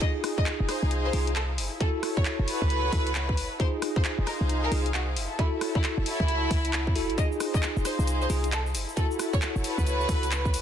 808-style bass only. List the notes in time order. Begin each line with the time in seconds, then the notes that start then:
0.60 F1
0.83 C2
1.13 C2
1.58 F#1
2.39 F#1
2.62 C#2
2.93 C#2
3.37 F#1
4.18 F1
4.41 C2
4.72 C2
5.16 F#1
5.98 F#1
6.20 C#2
6.51 C#2
6.87 F#2
6.96 E1
7.10 A1
7.77 F1
7.99 C2
8.30 C2
8.75 F#1
9.56 F#1
9.78 C#2
10.09 C#2
10.54 F#1